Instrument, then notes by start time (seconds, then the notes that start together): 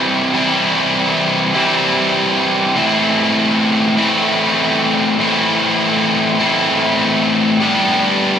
distorted electric guitar
Already playing: C3 E3 G3 C4 E4
0.33 C3 E3 G3 C4 E4
1.55 C3 E3 G3 C4 E4
2.75 A2 E3 A3 C4 E4
3.97 A2 E3 A3 C4 E4
5.18 A2 E3 A3 C4 E4
6.39 A2 E3 A3 C4 E4
7.60 G3 B3 D4 G4